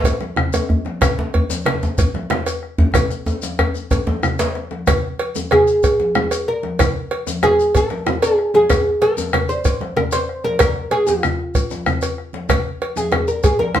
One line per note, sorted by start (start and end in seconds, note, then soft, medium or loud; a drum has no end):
0.04 bombo rim soft
0.04 bombo low loud
0.04 cowbell medium
0.04 djembe tone medium
0.04 shekere medium
0.21 bombo rim soft
0.21 djembe slap medium
0.21 high conga soft
0.36 bombo rim loud
0.36 high conga soft
0.36 low conga medium
0.36 djembe bass medium
0.53 bombo rim soft
0.53 cowbell medium
0.53 djembe tone medium
0.53 djembe tone loud
0.53 shekere soft
0.69 bombo rim soft
0.69 djembe bass medium
0.85 bombo rim soft
0.85 djembe slap medium
0.85 high conga medium
1.01 bombo rim loud
1.01 bombo low medium
1.01 cowbell medium
1.01 djembe slap medium
1.01 high conga soft
1.01 low conga medium
1.01 djembe bass medium
1.01 shekere medium
1.18 djembe slap soft
1.18 djembe tone loud
1.33 cowbell soft
1.33 high conga soft
1.33 djembe bass medium
1.49 djembe slap medium
1.49 high conga medium
1.49 djembe tone medium
1.49 shekere medium
1.66 bombo rim loud
1.66 cowbell soft
1.66 djembe slap medium
1.66 low conga medium
1.66 djembe bass medium
1.83 djembe tone medium
1.83 shekere soft
1.98 bombo rim soft
1.98 bombo low loud
1.98 cowbell medium
1.98 djembe bass medium
1.98 shekere medium
2.14 bombo rim soft
2.14 djembe slap medium
2.14 high conga medium
2.30 bombo rim medium
2.30 djembe slap medium
2.30 high conga soft
2.30 low conga medium
2.30 djembe bass medium
2.46 bombo rim soft
2.46 cowbell medium
2.46 djembe tone medium
2.46 shekere soft
2.63 bombo rim soft
2.78 bombo rim soft
2.78 djembe slap medium
2.78 djembe bass loud
2.94 bombo rim medium
2.94 bombo low medium
2.94 cowbell medium
2.94 djembe tone medium
2.94 low conga medium
2.94 djembe bass medium
2.94 shekere medium
3.10 bombo rim soft
3.10 shekere soft
3.26 bombo rim soft
3.26 djembe tone loud
3.26 shekere soft
3.42 djembe slap medium
3.42 high conga medium
3.42 djembe tone medium
3.42 shekere soft
3.59 bombo rim loud
3.59 cowbell soft
3.59 djembe tone loud
3.59 djembe bass medium
3.75 high conga soft
3.75 shekere soft
3.91 bombo rim soft
3.91 bombo low medium
3.91 cowbell soft
3.91 djembe tone loud
3.91 shekere medium
4.07 djembe slap medium
4.07 high conga medium
4.07 djembe tone loud
4.23 bombo rim medium
4.23 high conga soft
4.23 low conga medium
4.23 djembe bass medium
4.23 shekere soft
4.39 cowbell soft
4.39 djembe slap loud
4.39 djembe bass soft
4.39 shekere soft
4.55 bombo rim soft
4.55 djembe slap soft
4.55 high conga soft
4.71 bombo rim soft
4.71 djembe slap medium
4.71 high conga soft
4.87 bombo rim loud
4.87 bombo low loud
4.87 cowbell medium
4.87 high conga soft
4.87 djembe bass medium
4.87 low conga medium
4.87 shekere medium
5.03 djembe slap soft
5.19 cowbell medium
5.19 high conga soft
5.35 djembe slap medium
5.35 high conga medium
5.35 djembe tone medium
5.35 shekere soft
5.51 6.48 G#4 medium
5.51 bombo rim loud
5.51 cowbell medium
5.51 low conga medium
5.51 djembe bass medium
5.67 shekere soft
5.83 bombo rim soft
5.83 bombo low medium
5.83 cowbell medium
5.83 shekere medium
6.00 djembe slap medium
6.00 high conga medium
6.15 bombo rim loud
6.15 high conga soft
6.15 low conga medium
6.15 djembe bass medium
6.31 bombo rim soft
6.31 cowbell soft
6.31 djembe tone medium
6.31 shekere soft
6.48 7.43 A#4 medium
6.48 bombo rim soft
6.63 bombo rim soft
6.63 djembe slap medium
6.63 high conga medium
6.79 bombo rim loud
6.79 bombo low loud
6.79 cowbell medium
6.79 high conga soft
6.79 djembe bass medium
6.79 low conga loud
6.79 shekere medium
6.95 djembe slap soft
7.11 cowbell medium
7.11 high conga soft
7.27 djembe slap medium
7.27 djembe tone medium
7.27 high conga medium
7.27 shekere medium
7.42 7.76 G#4 loud
7.42 bombo rim loud
7.42 cowbell medium
7.42 djembe bass medium
7.42 low conga medium
7.60 shekere soft
7.75 8.22 A#4 loud
7.75 bombo rim soft
7.75 bombo low medium
7.75 cowbell medium
7.75 shekere medium
7.90 bombo rim soft
7.90 djembe slap medium
7.90 high conga medium
8.07 bombo rim medium
8.07 high conga soft
8.07 low conga loud
8.07 djembe bass medium
8.22 8.52 G#4 loud
8.22 bombo rim soft
8.22 cowbell medium
8.22 djembe tone medium
8.22 shekere soft
8.39 bombo rim soft
8.54 9.01 G#4 loud
8.54 bombo rim soft
8.54 djembe slap medium
8.54 high conga medium
8.70 bombo rim loud
8.70 bombo low loud
8.70 cowbell medium
8.70 high conga soft
8.70 djembe bass medium
8.70 low conga medium
8.70 shekere medium
8.86 djembe slap soft
9.01 9.46 A#4 loud
9.01 cowbell medium
9.01 high conga soft
9.17 djembe slap medium
9.17 high conga medium
9.17 djembe tone medium
9.17 shekere soft
9.33 bombo rim loud
9.33 cowbell medium
9.33 low conga medium
9.33 djembe bass medium
9.49 9.96 C5 medium
9.49 shekere soft
9.65 bombo rim soft
9.65 bombo low medium
9.65 cowbell medium
9.65 shekere medium
9.80 bombo rim soft
9.80 djembe slap medium
9.80 high conga soft
9.97 10.02 A#4 loud
9.97 bombo rim medium
9.97 high conga soft
9.97 low conga medium
9.97 djembe bass medium
10.12 10.44 C5 loud
10.12 bombo rim soft
10.12 cowbell medium
10.12 djembe tone medium
10.12 shekere soft
10.29 bombo rim soft
10.44 10.59 A#4 loud
10.44 bombo rim soft
10.44 djembe slap medium
10.44 high conga soft
10.59 10.89 A#4 loud
10.59 bombo rim loud
10.59 bombo low loud
10.59 cowbell medium
10.59 djembe slap soft
10.59 low conga medium
10.59 djembe bass medium
10.59 shekere medium
10.76 bombo rim soft
10.76 djembe slap soft
10.91 11.08 G#4 loud
10.91 bombo rim soft
10.91 cowbell medium
10.91 high conga soft
11.07 11.98 F4 medium
11.07 bombo rim soft
11.07 djembe slap medium
11.07 high conga soft
11.07 djembe tone medium
11.07 shekere medium
11.23 bombo rim loud
11.23 low conga medium
11.23 djembe bass medium
11.23 shekere soft
11.39 bombo rim soft
11.39 djembe slap soft
11.55 bombo low medium
11.55 cowbell soft
11.55 djembe slap soft
11.55 high conga soft
11.55 shekere medium
11.70 djembe slap medium
11.70 high conga soft
11.70 shekere soft
11.86 bombo rim loud
11.86 high conga soft
11.86 low conga medium
11.86 djembe bass medium
11.86 shekere soft
12.02 cowbell soft
12.02 djembe tone medium
12.02 shekere soft
12.18 bombo rim soft
12.33 bombo rim soft
12.33 djembe slap medium
12.33 high conga medium
12.49 bombo rim loud
12.49 bombo low loud
12.49 cowbell medium
12.49 high conga soft
12.49 low conga medium
12.49 djembe bass medium
12.49 shekere medium
12.66 djembe slap soft
12.81 cowbell medium
12.81 high conga soft
12.96 13.28 G#4 medium
12.96 djembe slap medium
12.96 high conga medium
12.96 djembe tone medium
12.96 shekere soft
13.12 bombo rim loud
13.12 cowbell medium
13.12 low conga medium
13.12 djembe bass medium
13.28 13.43 A#4 medium
13.28 shekere soft
13.43 13.59 G#4 medium
13.43 bombo rim soft
13.43 bombo low loud
13.43 cowbell medium
13.43 shekere medium
13.59 13.75 A#4 loud
13.59 bombo rim soft
13.59 djembe slap medium
13.59 high conga medium
13.74 13.80 C5 medium
13.74 bombo rim loud
13.74 high conga soft
13.74 low conga medium
13.74 djembe bass medium